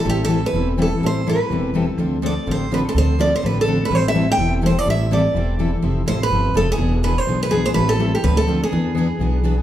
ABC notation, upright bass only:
X:1
M:4/4
L:1/8
Q:"Swing" 1/4=249
K:Am
V:1 name="Upright bass" clef=bass
A,,,4 E,,,4 | A,,,4 E,,,4 | D,,4 A,,,4 | D,,4 A,,,4 |
A,,,4 E,,,4 | A,,,4 E,,,4 | F,,,2 A,,,2 G,,,2 F,,,2 | E,,,4 B,,,4 |
A,,,4 D,,4 | E,,4 B,,,4 |]